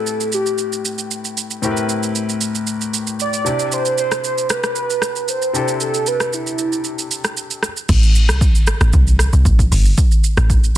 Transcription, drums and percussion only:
0.07 shaker medium
0.20 shaker soft
0.32 shaker medium
0.46 shaker soft
0.58 shaker medium
0.73 shaker medium
0.85 shaker medium
0.98 shaker medium
1.11 shaker medium
1.25 shaker medium
1.37 shaker medium
1.51 shaker medium
1.63 shaker medium
1.77 shaker medium
1.89 shaker medium
2.03 shaker medium
2.15 shaker medium
2.29 shaker medium
2.41 shaker medium
2.55 shaker medium
2.67 shaker medium
2.81 shaker medium
2.94 shaker medium
3.07 shaker medium
3.20 shaker medium
3.33 shaker medium
3.46 shaker medium
3.59 shaker medium
3.72 shaker medium
3.85 shaker medium
3.98 shaker medium
4.12 cross-stick medium
4.12 shaker medium
4.24 shaker medium
4.38 shaker medium
4.50 cross-stick loud
4.50 shaker medium
4.64 cross-stick medium
4.64 shaker soft
4.76 shaker medium
4.90 shaker medium
5.02 cross-stick medium
5.02 shaker medium
5.16 shaker medium
5.28 shaker medium
5.42 shaker medium
5.55 shaker loud
5.68 shaker medium
5.80 shaker medium
5.94 shaker medium
6.07 shaker medium
6.20 cross-stick medium
6.20 shaker medium
6.33 shaker medium
6.47 shaker soft
6.58 shaker medium
6.72 shaker soft
6.84 shaker medium
6.99 shaker medium
7.11 shaker medium
7.24 cross-stick medium
7.24 shaker medium
7.37 shaker medium
7.51 shaker medium
7.63 cross-stick medium
7.63 shaker medium
7.77 shaker medium
7.89 kick loud
7.89 crash loud
7.89 shaker medium
8.03 shaker medium
8.15 shaker medium
8.29 cross-stick medium
8.29 shaker medium
8.41 kick loud
8.41 shaker medium
8.55 shaker medium
8.67 cross-stick loud
8.67 shaker medium
8.81 cross-stick loud
8.81 shaker medium
8.93 kick loud
8.93 shaker medium
9.07 shaker medium
9.19 cross-stick loud
9.19 shaker medium
9.33 shaker medium
9.45 kick medium
9.45 shaker medium
9.59 kick medium
9.59 shaker medium
9.72 open hi-hat medium
9.72 shaker loud
9.85 shaker medium
9.98 kick loud
9.98 shaker medium
10.11 shaker medium
10.24 shaker medium
10.37 cross-stick medium
10.37 shaker medium
10.50 kick loud
10.50 shaker medium
10.64 shaker medium

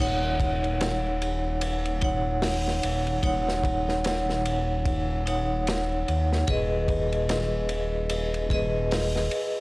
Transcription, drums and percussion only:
0.00 crash medium
0.40 kick medium
0.40 ride medium
0.64 ride soft
0.81 snare loud
0.81 ride medium
1.22 ride medium
1.61 ride medium
1.86 ride soft
2.01 kick medium
2.01 ride medium
2.42 snare loud
2.42 open hi-hat medium
2.68 snare soft
2.83 ride medium
3.07 ride soft
3.23 kick loud
3.23 ride medium
3.48 snare soft
3.63 kick medium
3.63 ride medium
3.89 snare soft
4.04 snare loud
4.04 ride medium
4.30 snare soft
4.45 ride medium
4.85 kick loud
4.85 ride medium
5.27 ride medium
5.67 snare loud
5.67 ride medium
6.08 ride medium
6.32 snare soft
6.48 kick loud
6.48 ride medium
6.88 kick medium
6.88 ride medium
7.12 ride soft
7.29 snare loud
7.29 ride medium
7.69 ride medium
8.09 ride medium
8.34 ride soft
8.50 kick medium
8.50 ride medium
8.91 snare loud
8.91 open hi-hat medium
9.16 snare soft
9.31 ride medium

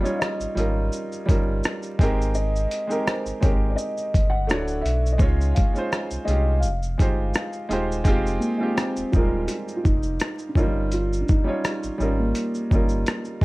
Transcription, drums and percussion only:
0.05 shaker soft
0.22 cross-stick loud
0.22 shaker medium
0.41 shaker medium
0.57 closed hi-hat medium
0.57 shaker soft
0.92 shaker medium
1.12 shaker soft
1.29 kick medium
1.29 closed hi-hat medium
1.29 shaker soft
1.64 cross-stick loud
1.64 shaker medium
1.83 shaker soft
1.99 kick loud
1.99 closed hi-hat medium
1.99 shaker soft
2.22 shaker soft
2.35 shaker medium
2.56 shaker soft
2.71 closed hi-hat medium
2.71 shaker soft
2.91 shaker soft
3.07 cross-stick loud
3.07 shaker medium
3.26 shaker medium
3.43 kick medium
3.43 closed hi-hat medium
3.43 shaker soft
3.78 shaker medium
3.97 shaker soft
4.14 kick medium
4.14 closed hi-hat medium
4.14 shaker soft
4.49 cross-stick loud
4.49 shaker medium
4.68 shaker soft
4.86 closed hi-hat medium
4.86 shaker soft
5.06 shaker soft
5.19 kick loud
5.19 shaker medium
5.41 shaker soft
5.56 kick medium
5.56 closed hi-hat medium
5.56 shaker medium
5.76 shaker soft
5.92 cross-stick loud
5.92 shaker medium
6.11 shaker medium
6.28 closed hi-hat medium
6.28 shaker soft
6.63 shaker medium
6.83 shaker soft
6.99 kick medium
6.99 closed hi-hat medium
6.99 shaker soft
7.34 cross-stick loud
7.34 shaker medium
7.53 shaker soft
7.71 closed hi-hat medium
7.71 shaker soft
7.92 shaker soft
8.05 kick loud
8.05 closed hi-hat medium
8.05 shaker medium
8.26 shaker soft
8.42 shaker medium
8.78 cross-stick loud
8.78 closed hi-hat medium
8.78 shaker medium
8.96 shaker medium
9.13 kick medium
9.13 shaker soft
9.48 closed hi-hat medium
9.48 shaker medium
9.68 shaker soft
9.85 kick medium
9.85 shaker soft
10.03 shaker soft
10.20 cross-stick loud
10.20 closed hi-hat medium
10.20 shaker medium
10.39 shaker soft
10.55 kick loud
10.55 shaker soft
10.92 closed hi-hat medium
10.92 shaker medium
11.13 shaker soft
11.28 kick loud
11.28 shaker soft
11.65 cross-stick loud
11.65 closed hi-hat medium
11.65 shaker medium
11.83 shaker medium
12.00 shaker soft
12.35 closed hi-hat medium
12.35 shaker medium
12.54 shaker soft
12.71 kick medium
12.71 shaker soft
12.89 shaker soft
13.06 cross-stick loud
13.06 closed hi-hat medium
13.06 shaker medium
13.25 shaker soft
13.41 kick loud

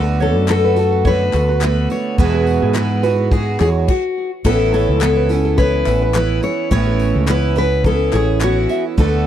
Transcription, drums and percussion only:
0.20 tambourine medium
0.48 clap medium
0.77 tambourine medium
1.05 kick loud
1.33 clap medium
1.33 tambourine medium
1.61 clap medium
1.90 tambourine medium
2.18 kick loud
2.47 tambourine medium
2.74 clap medium
2.74 clap loud
3.03 tambourine medium
3.31 kick loud
3.60 clap medium
3.60 tambourine medium
3.88 kick loud
3.88 crash medium
4.45 kick loud
4.45 crash medium
4.73 tambourine medium
5.01 clap medium
5.01 clap loud
5.30 tambourine medium
5.58 kick loud
5.86 clap medium
5.86 tambourine medium
6.14 clap medium
6.14 clap loud
6.43 tambourine medium
6.71 kick loud
6.99 tambourine medium
7.27 clap medium
7.27 clap loud
7.56 tambourine medium
7.84 kick loud
8.13 clap medium
8.13 tambourine medium
8.41 clap medium
8.41 clap loud
8.69 tambourine medium
8.98 kick loud

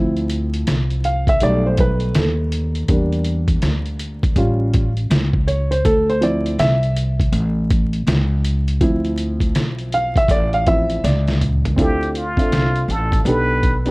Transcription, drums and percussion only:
0.17 closed hi-hat soft
0.30 closed hi-hat medium
0.54 closed hi-hat medium
0.67 snare medium
0.67 closed hi-hat medium
0.90 closed hi-hat soft
1.04 closed hi-hat medium
1.27 kick medium
1.27 closed hi-hat soft
1.40 closed hi-hat medium
1.77 kick loud
1.77 closed hi-hat medium
2.00 closed hi-hat soft
2.15 snare loud
2.15 closed hi-hat loud
2.52 closed hi-hat medium
2.75 closed hi-hat soft
2.88 kick loud
2.88 closed hi-hat medium
3.12 closed hi-hat soft
3.24 closed hi-hat medium
3.48 kick medium
3.48 closed hi-hat medium
3.62 snare medium
3.62 closed hi-hat medium
3.86 closed hi-hat soft
3.99 closed hi-hat medium
4.23 kick loud
4.23 closed hi-hat medium
4.36 kick medium
4.36 closed hi-hat medium
4.74 kick loud
4.74 closed hi-hat medium
4.97 closed hi-hat soft
5.11 snare loud
5.11 closed hi-hat loud
5.33 kick medium
5.48 closed hi-hat medium
5.72 closed hi-hat medium
5.85 kick loud
5.85 closed hi-hat medium
6.10 closed hi-hat soft
6.22 closed hi-hat medium
6.46 closed hi-hat medium
6.59 snare medium
6.59 closed hi-hat medium
6.83 closed hi-hat soft
6.97 closed hi-hat medium
7.20 kick medium
7.20 closed hi-hat medium
7.33 closed hi-hat medium
7.70 kick loud
7.70 closed hi-hat medium
7.93 closed hi-hat soft
8.07 snare loud
8.07 closed hi-hat loud
8.45 closed hi-hat medium
8.68 closed hi-hat medium
8.81 kick loud
8.81 closed hi-hat medium
9.05 closed hi-hat soft
9.18 closed hi-hat medium
9.40 kick medium
9.40 closed hi-hat medium
9.55 snare medium
9.55 closed hi-hat medium
9.78 closed hi-hat soft
9.92 closed hi-hat medium
10.16 kick loud
10.16 closed hi-hat soft
10.28 kick medium
10.28 closed hi-hat loud
10.53 closed hi-hat soft
10.67 kick loud
10.67 closed hi-hat medium
10.90 closed hi-hat soft
11.05 snare medium
11.05 closed hi-hat loud
11.28 snare medium
11.28 closed hi-hat soft
11.41 closed hi-hat medium
11.41 mid tom loud
11.65 closed hi-hat medium
11.65 floor tom medium
11.78 kick loud
11.78 closed hi-hat medium
12.03 closed hi-hat soft
12.15 closed hi-hat medium
12.37 kick medium
12.37 closed hi-hat soft
12.52 snare medium
12.52 closed hi-hat medium
12.76 closed hi-hat soft
12.90 closed hi-hat medium
13.12 kick medium
13.12 closed hi-hat soft
13.26 closed hi-hat medium
13.63 kick medium
13.63 closed hi-hat medium
13.86 closed hi-hat soft

